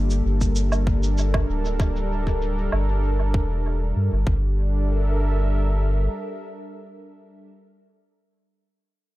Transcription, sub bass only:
0.00 0.22 G1 loud
0.25 1.46 G1 medium
1.49 2.69 D1 medium
2.72 3.36 G1 medium
3.34 3.93 E1 medium
3.96 4.10 G2 medium
4.12 4.25 G1 medium
4.27 6.08 G1 medium

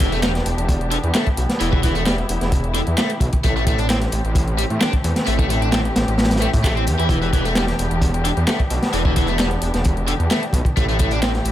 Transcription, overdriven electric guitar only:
0.01 0.12 E3 medium
0.12 0.20 A3 medium
0.23 0.31 G3 medium
0.92 0.97 D3 loud
1.15 1.26 A3 medium
1.61 1.69 E3 loud
1.72 1.80 E3 medium
1.84 1.95 E3 medium
1.95 2.03 A3 medium
2.07 2.14 G3 medium
2.75 2.80 D3 loud
2.98 3.09 A3 loud
3.45 3.52 A3 loud
3.56 3.63 A3 medium
3.67 3.78 A3 medium
3.79 3.86 D4 loud
3.90 3.97 C4 medium
4.58 4.63 G3 loud
4.81 4.93 D4 loud
5.27 5.35 A3 loud
5.39 5.46 A3 medium
5.50 5.61 A3 medium
5.62 5.69 D4 loud
5.73 5.81 C4 medium
6.42 6.50 A3 medium
6.64 6.72 A3 medium
6.76 6.84 C4 medium
6.99 7.07 E4 loud
7.10 7.18 E3 loud
7.22 7.29 E3 medium
7.33 7.45 E3 medium
7.45 7.52 A3 loud
7.56 7.64 G3 medium
8.25 8.30 D3 loud
8.48 8.59 A3 loud
8.94 9.01 E3 loud
9.06 9.13 E3 medium
9.16 9.28 E3 medium
9.29 9.36 A3 loud
9.40 9.47 G3 medium
10.08 10.13 D3 loud
10.31 10.42 A3 loud
10.77 10.85 A3 loud
10.89 10.96 A3 medium
11.00 11.11 A3 medium
11.12 11.19 D4 loud
11.22 11.30 C4 medium

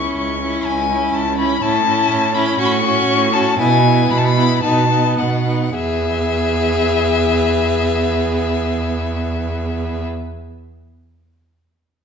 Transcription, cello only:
0.00 0.12 C#2 medium
0.18 0.60 C#2 medium
0.66 1.08 C#2 medium
1.14 1.57 C#2 medium
1.62 2.05 A2 medium
2.11 2.54 A2 medium
2.60 3.03 A2 medium
3.09 3.53 A2 medium
3.59 4.04 B2 loud
4.10 4.57 B2 medium
4.63 5.12 B2 medium
5.18 5.69 B2 medium
5.76 10.07 E2 medium

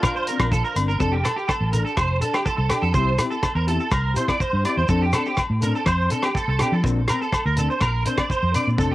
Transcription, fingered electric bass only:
0.40 0.61 A#1 medium
0.76 0.98 G1 medium
1.00 1.22 F1 medium
1.61 1.83 A1 medium
1.97 2.19 F1 medium
2.58 2.69 C2 medium
2.82 2.93 F2 medium
2.94 3.16 C2 medium
3.55 3.77 E2 medium
3.92 4.14 C2 medium
4.53 4.64 G2 medium
4.77 4.88 E2 medium
4.89 5.11 F2 medium
5.50 5.72 A2 medium
5.86 6.08 F2 medium
6.48 6.59 C2 medium
6.72 6.83 F3 medium
6.84 7.06 A#1 medium
7.46 7.67 D2 medium
7.81 8.03 A#1 medium
8.43 8.53 F2 medium
8.67 8.77 A#2 medium
8.78 8.95 F1 medium

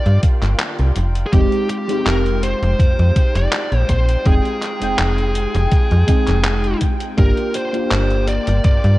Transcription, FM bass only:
0.06 0.19 G2 medium
0.43 0.55 G1 medium
0.80 0.92 C2 medium
0.97 1.24 F1 medium
1.33 1.47 F1 loud
2.06 2.54 F1 medium
2.63 2.75 F1 loud
2.79 2.95 F2 soft
2.99 3.12 F2 medium
3.35 3.48 F1 medium
3.72 3.85 A#1 medium
3.89 4.17 A#1 medium
4.26 4.40 F1 loud
4.82 4.95 F1 soft
4.99 5.47 F1 medium
5.55 5.68 F1 loud
5.92 6.04 F2 medium
6.28 6.75 F1 loud
7.18 7.33 G1 loud
7.91 8.39 G1 medium
8.48 8.60 G1 loud
8.65 8.80 G2 soft
8.84 8.97 G2 medium

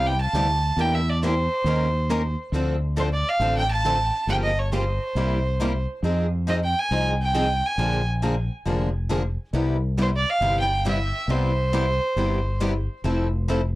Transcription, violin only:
0.06 0.20 G5 medium
0.21 0.82 A5 medium
0.80 0.96 G5 medium
0.94 1.11 E5 medium
1.09 1.23 D5 medium
1.24 2.35 C5 medium
2.99 3.05 C5 medium
3.13 3.30 D5 medium
3.28 3.56 F5 medium
3.57 3.70 G5 medium
3.71 4.25 A5 medium
4.29 4.36 G5 medium
4.43 4.61 D#5 medium
4.59 4.73 C#5 medium
4.73 5.85 C5 medium
6.49 6.55 D#5 medium
6.64 6.80 G5 medium
6.79 7.07 G#5 medium
7.22 7.67 G5 medium
7.66 8.08 G#5 medium
10.02 10.07 C5 medium
10.16 10.31 D5 medium
10.29 10.57 F5 medium
10.60 10.85 G5 medium
10.88 11.32 E5 medium
11.31 12.62 C5 medium

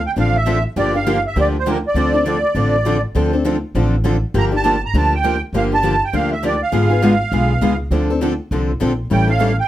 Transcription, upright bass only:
0.17 0.64 A1 medium
0.76 1.24 G1 medium
1.36 1.84 D2 medium
1.94 2.43 D2 medium
2.55 3.03 A1 medium
3.15 3.63 D2 medium
3.75 4.23 A1 medium
4.34 4.82 G1 medium
4.94 5.42 D2 medium
5.53 6.01 G1 medium
6.13 6.61 D2 medium
6.73 7.20 G#1 medium
7.32 7.57 B1 medium
7.62 7.87 C#2 medium
7.91 8.39 D2 medium
8.51 8.76 C2 medium
8.81 9.06 A#1 medium
9.11 9.59 A1 medium

